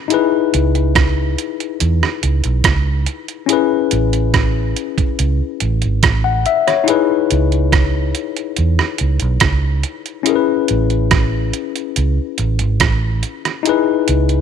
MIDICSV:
0, 0, Header, 1, 4, 480
1, 0, Start_track
1, 0, Key_signature, 4, "minor"
1, 0, Tempo, 846501
1, 59, Time_signature, 4, 2, 24, 8
1, 8172, End_track
2, 0, Start_track
2, 0, Title_t, "Tine electric piano"
2, 0, Program_c, 0, 4
2, 0, Control_c, 0, 64, 127
2, 46, Note_on_c, 0, 63, 68
2, 55, Note_on_c, 0, 64, 67
2, 65, Control_c, 0, 64, 0
2, 67, Note_on_c, 0, 68, 60
2, 78, Note_on_c, 0, 71, 77
2, 160, Control_c, 0, 64, 127
2, 1950, Note_off_c, 0, 63, 0
2, 1955, Note_off_c, 0, 64, 0
2, 1960, Note_off_c, 0, 68, 0
2, 1964, Note_on_c, 0, 61, 74
2, 1966, Note_off_c, 0, 71, 0
2, 1975, Note_on_c, 0, 64, 63
2, 1984, Note_on_c, 0, 68, 65
2, 1987, Control_c, 0, 64, 0
2, 2000, Note_on_c, 0, 71, 77
2, 2097, Control_c, 0, 64, 127
2, 3540, Note_on_c, 0, 78, 64
2, 3653, Note_off_c, 0, 78, 0
2, 3665, Note_on_c, 0, 76, 68
2, 3779, Note_off_c, 0, 76, 0
2, 3784, Note_on_c, 0, 73, 65
2, 3870, Note_off_c, 0, 61, 0
2, 3875, Note_off_c, 0, 64, 0
2, 3878, Note_on_c, 0, 63, 69
2, 3879, Note_off_c, 0, 68, 0
2, 3888, Note_off_c, 0, 71, 0
2, 3890, Note_on_c, 0, 64, 68
2, 3901, Note_on_c, 0, 68, 66
2, 3907, Control_c, 0, 64, 0
2, 3912, Note_on_c, 0, 71, 78
2, 4011, Note_off_c, 0, 73, 0
2, 4012, Control_c, 0, 64, 127
2, 5787, Note_off_c, 0, 63, 0
2, 5793, Note_off_c, 0, 64, 0
2, 5798, Note_off_c, 0, 68, 0
2, 5802, Note_on_c, 0, 61, 70
2, 5804, Note_off_c, 0, 71, 0
2, 5810, Note_on_c, 0, 64, 62
2, 5823, Note_on_c, 0, 68, 64
2, 5828, Control_c, 0, 64, 0
2, 5837, Note_on_c, 0, 70, 58
2, 5866, Note_off_c, 0, 70, 0
2, 5872, Note_on_c, 0, 71, 74
2, 5935, Control_c, 0, 64, 127
2, 7709, Note_off_c, 0, 61, 0
2, 7713, Note_off_c, 0, 64, 0
2, 7719, Note_off_c, 0, 68, 0
2, 7729, Note_on_c, 0, 63, 71
2, 7738, Note_on_c, 0, 64, 63
2, 7744, Note_off_c, 0, 71, 0
2, 7747, Control_c, 0, 64, 0
2, 7752, Note_on_c, 0, 68, 64
2, 7763, Note_on_c, 0, 71, 80
2, 7838, Control_c, 0, 64, 127
2, 8172, Note_off_c, 0, 63, 0
2, 8172, Note_off_c, 0, 64, 0
2, 8172, Note_off_c, 0, 68, 0
2, 8172, Note_off_c, 0, 71, 0
2, 8172, End_track
3, 0, Start_track
3, 0, Title_t, "Fingered electric bass"
3, 0, Program_c, 1, 33
3, 308, Note_on_c, 1, 37, 97
3, 761, Note_off_c, 1, 37, 0
3, 1028, Note_on_c, 1, 40, 99
3, 1140, Note_off_c, 1, 40, 0
3, 1267, Note_on_c, 1, 37, 85
3, 1379, Note_off_c, 1, 37, 0
3, 1389, Note_on_c, 1, 35, 87
3, 1497, Note_off_c, 1, 35, 0
3, 1501, Note_on_c, 1, 37, 96
3, 1728, Note_off_c, 1, 37, 0
3, 2226, Note_on_c, 1, 33, 98
3, 2680, Note_off_c, 1, 33, 0
3, 2947, Note_on_c, 1, 37, 89
3, 3060, Note_off_c, 1, 37, 0
3, 3185, Note_on_c, 1, 33, 90
3, 3299, Note_off_c, 1, 33, 0
3, 3313, Note_on_c, 1, 32, 77
3, 3418, Note_off_c, 1, 32, 0
3, 3421, Note_on_c, 1, 33, 83
3, 3648, Note_off_c, 1, 33, 0
3, 4149, Note_on_c, 1, 37, 90
3, 4602, Note_off_c, 1, 37, 0
3, 4867, Note_on_c, 1, 40, 87
3, 4980, Note_off_c, 1, 40, 0
3, 5109, Note_on_c, 1, 37, 83
3, 5221, Note_off_c, 1, 37, 0
3, 5228, Note_on_c, 1, 35, 85
3, 5336, Note_off_c, 1, 35, 0
3, 5339, Note_on_c, 1, 37, 89
3, 5567, Note_off_c, 1, 37, 0
3, 6071, Note_on_c, 1, 33, 94
3, 6523, Note_off_c, 1, 33, 0
3, 6790, Note_on_c, 1, 37, 99
3, 6902, Note_off_c, 1, 37, 0
3, 7026, Note_on_c, 1, 33, 91
3, 7140, Note_off_c, 1, 33, 0
3, 7151, Note_on_c, 1, 32, 86
3, 7259, Note_off_c, 1, 32, 0
3, 7266, Note_on_c, 1, 33, 79
3, 7491, Note_off_c, 1, 33, 0
3, 7989, Note_on_c, 1, 37, 92
3, 8172, Note_off_c, 1, 37, 0
3, 8172, End_track
4, 0, Start_track
4, 0, Title_t, "Drums"
4, 59, Note_on_c, 9, 42, 85
4, 115, Note_off_c, 9, 42, 0
4, 305, Note_on_c, 9, 42, 71
4, 361, Note_off_c, 9, 42, 0
4, 426, Note_on_c, 9, 42, 42
4, 482, Note_off_c, 9, 42, 0
4, 541, Note_on_c, 9, 36, 114
4, 543, Note_on_c, 9, 42, 68
4, 544, Note_on_c, 9, 37, 115
4, 598, Note_off_c, 9, 36, 0
4, 600, Note_off_c, 9, 42, 0
4, 601, Note_off_c, 9, 37, 0
4, 785, Note_on_c, 9, 42, 73
4, 841, Note_off_c, 9, 42, 0
4, 909, Note_on_c, 9, 42, 52
4, 966, Note_off_c, 9, 42, 0
4, 1023, Note_on_c, 9, 42, 85
4, 1079, Note_off_c, 9, 42, 0
4, 1151, Note_on_c, 9, 37, 69
4, 1208, Note_off_c, 9, 37, 0
4, 1264, Note_on_c, 9, 42, 66
4, 1321, Note_off_c, 9, 42, 0
4, 1381, Note_on_c, 9, 42, 55
4, 1438, Note_off_c, 9, 42, 0
4, 1497, Note_on_c, 9, 42, 90
4, 1498, Note_on_c, 9, 36, 97
4, 1502, Note_on_c, 9, 37, 99
4, 1554, Note_off_c, 9, 42, 0
4, 1555, Note_off_c, 9, 36, 0
4, 1559, Note_off_c, 9, 37, 0
4, 1738, Note_on_c, 9, 42, 65
4, 1795, Note_off_c, 9, 42, 0
4, 1862, Note_on_c, 9, 42, 49
4, 1919, Note_off_c, 9, 42, 0
4, 1979, Note_on_c, 9, 42, 88
4, 2036, Note_off_c, 9, 42, 0
4, 2218, Note_on_c, 9, 42, 78
4, 2274, Note_off_c, 9, 42, 0
4, 2342, Note_on_c, 9, 42, 41
4, 2399, Note_off_c, 9, 42, 0
4, 2460, Note_on_c, 9, 36, 102
4, 2460, Note_on_c, 9, 42, 66
4, 2461, Note_on_c, 9, 37, 103
4, 2516, Note_off_c, 9, 36, 0
4, 2516, Note_off_c, 9, 42, 0
4, 2518, Note_off_c, 9, 37, 0
4, 2702, Note_on_c, 9, 42, 71
4, 2758, Note_off_c, 9, 42, 0
4, 2822, Note_on_c, 9, 36, 67
4, 2825, Note_on_c, 9, 42, 55
4, 2879, Note_off_c, 9, 36, 0
4, 2881, Note_off_c, 9, 42, 0
4, 2942, Note_on_c, 9, 42, 83
4, 2999, Note_off_c, 9, 42, 0
4, 3178, Note_on_c, 9, 42, 73
4, 3234, Note_off_c, 9, 42, 0
4, 3299, Note_on_c, 9, 42, 56
4, 3355, Note_off_c, 9, 42, 0
4, 3418, Note_on_c, 9, 36, 104
4, 3418, Note_on_c, 9, 42, 92
4, 3423, Note_on_c, 9, 37, 105
4, 3474, Note_off_c, 9, 42, 0
4, 3475, Note_off_c, 9, 36, 0
4, 3479, Note_off_c, 9, 37, 0
4, 3661, Note_on_c, 9, 42, 63
4, 3717, Note_off_c, 9, 42, 0
4, 3786, Note_on_c, 9, 37, 57
4, 3786, Note_on_c, 9, 42, 50
4, 3842, Note_off_c, 9, 42, 0
4, 3843, Note_off_c, 9, 37, 0
4, 3900, Note_on_c, 9, 42, 87
4, 3956, Note_off_c, 9, 42, 0
4, 4142, Note_on_c, 9, 42, 76
4, 4199, Note_off_c, 9, 42, 0
4, 4264, Note_on_c, 9, 42, 41
4, 4321, Note_off_c, 9, 42, 0
4, 4380, Note_on_c, 9, 36, 116
4, 4381, Note_on_c, 9, 42, 76
4, 4383, Note_on_c, 9, 37, 100
4, 4437, Note_off_c, 9, 36, 0
4, 4438, Note_off_c, 9, 42, 0
4, 4440, Note_off_c, 9, 37, 0
4, 4619, Note_on_c, 9, 42, 77
4, 4676, Note_off_c, 9, 42, 0
4, 4743, Note_on_c, 9, 42, 53
4, 4800, Note_off_c, 9, 42, 0
4, 4857, Note_on_c, 9, 42, 80
4, 4913, Note_off_c, 9, 42, 0
4, 4984, Note_on_c, 9, 37, 73
4, 5041, Note_off_c, 9, 37, 0
4, 5094, Note_on_c, 9, 42, 72
4, 5151, Note_off_c, 9, 42, 0
4, 5214, Note_on_c, 9, 42, 59
4, 5271, Note_off_c, 9, 42, 0
4, 5331, Note_on_c, 9, 42, 89
4, 5336, Note_on_c, 9, 36, 102
4, 5336, Note_on_c, 9, 37, 105
4, 5388, Note_off_c, 9, 42, 0
4, 5393, Note_off_c, 9, 36, 0
4, 5393, Note_off_c, 9, 37, 0
4, 5576, Note_on_c, 9, 42, 66
4, 5633, Note_off_c, 9, 42, 0
4, 5702, Note_on_c, 9, 42, 48
4, 5759, Note_off_c, 9, 42, 0
4, 5816, Note_on_c, 9, 42, 91
4, 5873, Note_off_c, 9, 42, 0
4, 6058, Note_on_c, 9, 42, 75
4, 6114, Note_off_c, 9, 42, 0
4, 6181, Note_on_c, 9, 42, 41
4, 6238, Note_off_c, 9, 42, 0
4, 6299, Note_on_c, 9, 42, 73
4, 6301, Note_on_c, 9, 36, 115
4, 6301, Note_on_c, 9, 37, 109
4, 6356, Note_off_c, 9, 42, 0
4, 6357, Note_off_c, 9, 37, 0
4, 6358, Note_off_c, 9, 36, 0
4, 6540, Note_on_c, 9, 42, 75
4, 6597, Note_off_c, 9, 42, 0
4, 6666, Note_on_c, 9, 42, 56
4, 6723, Note_off_c, 9, 42, 0
4, 6783, Note_on_c, 9, 42, 84
4, 6839, Note_off_c, 9, 42, 0
4, 7019, Note_on_c, 9, 42, 73
4, 7076, Note_off_c, 9, 42, 0
4, 7139, Note_on_c, 9, 42, 56
4, 7196, Note_off_c, 9, 42, 0
4, 7258, Note_on_c, 9, 42, 91
4, 7261, Note_on_c, 9, 36, 103
4, 7263, Note_on_c, 9, 37, 106
4, 7315, Note_off_c, 9, 42, 0
4, 7318, Note_off_c, 9, 36, 0
4, 7320, Note_off_c, 9, 37, 0
4, 7501, Note_on_c, 9, 42, 66
4, 7558, Note_off_c, 9, 42, 0
4, 7628, Note_on_c, 9, 42, 52
4, 7629, Note_on_c, 9, 37, 57
4, 7685, Note_off_c, 9, 37, 0
4, 7685, Note_off_c, 9, 42, 0
4, 7743, Note_on_c, 9, 42, 85
4, 7800, Note_off_c, 9, 42, 0
4, 7982, Note_on_c, 9, 42, 75
4, 8039, Note_off_c, 9, 42, 0
4, 8104, Note_on_c, 9, 42, 41
4, 8161, Note_off_c, 9, 42, 0
4, 8172, End_track
0, 0, End_of_file